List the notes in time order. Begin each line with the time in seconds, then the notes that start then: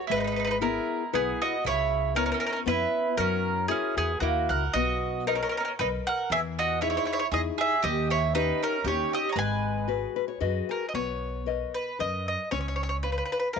Already playing: C#5
0.07 G#1 G#3 E4
0.11 B4
0.17 D#4 B4
0.24 D#4 B4
0.32 D#4
0.36 D#4 B4
0.45 D#4 B4
0.51 B4
0.61 B3 E4 G#4 A#4
1.13 B1 B3 E4 G#4 B4
1.42 F#4 D#5
1.64 C#2 C#3 E4 C#5
2.15 B3 C#4 E4 A#4
2.26 C#4 A#4
2.32 C#4 A#4
2.40 C#4 A#4
2.46 C#4 A#4
2.53 C#4 A#4
2.66 F2 B3 C#4 E4 B4
3.17 F#2 F#3 C#4 A#4
3.68 C#4 E4 F#4 G#4 A#4
3.97 E2 B3 G#4
4.20 D#2 A#3 E4 F#4 A#4
4.49 C#2 A#4 F#5
4.73 B1 B3 F#4 D#5
5.27 D#4 A#4 B4 D#5
5.35 C#4 A#4
5.43 C#4 A#4
5.49 C#4 A#4
5.57 C#4 A#4
5.65 C#4 A#4
5.79 B1 D#4 A#4 B4 D#5
6.07 A#4 F#5
6.30 E2 E3 G#4 E5
6.59 F#4 D#5
6.81 D#4 E4 G#4 C#5
6.90 E4 C#5
6.97 E4 C#5
7.05 E4 C#5
7.12 E4 C#5
7.19 E4 C#5
7.32 E2 D#4 E4 G#4 D#5
7.58 G#4 E5
7.83 D#2 D#3 G4 D#5
8.10 E4 C#5
8.35 C#4 D#4 G4 B4
8.63 C#4 A#4
8.84 D#2 C#4 D#4 G4 C#5
9.13 G4 D#5
9.29 C#5 A#5
9.36 G#1 G#3 B4 G#5
9.88 F#4 G#4 B4
10.16 B4
10.28 C#5
10.40 F#2 F#4 G#4 B4 D#5
10.69 A#4 G#5
10.89 D#5
10.94 B1 B3 C#5
11.46 A#4 B4 D#5
11.74 B4
11.99 F#2 A#4 B4 D#5
12.28 D#5
12.51 C#2 C#4 C#5
12.61 C#5
12.68 C#5
12.76 C#5
12.83 C#5
12.89 C#5
13.03 B4 C#5 F5
13.12 B4
13.18 B4
13.25 B4
13.32 B4
13.40 B4
13.53 G#1 A#4 B4 C#5 F5